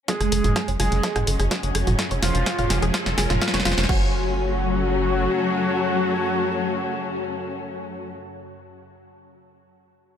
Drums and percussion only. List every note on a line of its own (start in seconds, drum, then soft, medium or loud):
0.08 kick loud
0.08 snare soft
0.08 closed hi-hat medium
0.21 cross-stick soft
0.21 closed hi-hat soft
0.32 open hi-hat loud
0.44 closed hi-hat soft
0.44 mid tom medium
0.56 kick loud
0.56 cross-stick medium
0.56 snare soft
0.56 closed hi-hat medium
0.68 closed hi-hat soft
0.80 cross-stick soft
0.80 open hi-hat loud
0.92 open hi-hat medium
1.03 kick loud
1.03 snare medium
1.03 closed hi-hat medium
1.16 cross-stick medium
1.16 closed hi-hat soft
1.16 mid tom medium
1.27 open hi-hat loud
1.40 cross-stick soft
1.40 closed hi-hat soft
1.51 kick loud
1.51 snare medium
1.51 closed hi-hat medium
1.63 closed hi-hat soft
1.75 cross-stick medium
1.75 open hi-hat loud
1.87 closed hi-hat soft
1.87 mid tom medium
1.99 kick loud
1.99 snare medium
1.99 closed hi-hat medium
2.11 closed hi-hat soft
2.23 snare medium
2.23 open hi-hat loud
2.35 closed hi-hat soft
2.46 kick loud
2.46 snare medium
2.46 closed hi-hat medium
2.59 closed hi-hat soft
2.59 mid tom medium
2.70 snare medium
2.70 open hi-hat loud
2.82 closed hi-hat soft
2.94 kick loud
2.94 snare medium
2.94 closed hi-hat medium
3.06 snare medium
3.06 closed hi-hat soft
3.18 snare loud
3.18 open hi-hat loud
3.30 snare medium
3.30 closed hi-hat soft
3.30 mid tom medium
3.42 kick loud
3.42 snare loud
3.42 closed hi-hat medium
3.48 snare medium
3.54 snare medium
3.54 closed hi-hat soft
3.60 snare medium
3.65 snare loud
3.65 open hi-hat loud
3.72 snare loud
3.78 snare loud
3.78 open hi-hat medium
3.83 snare loud
3.89 kick loud
3.89 crash medium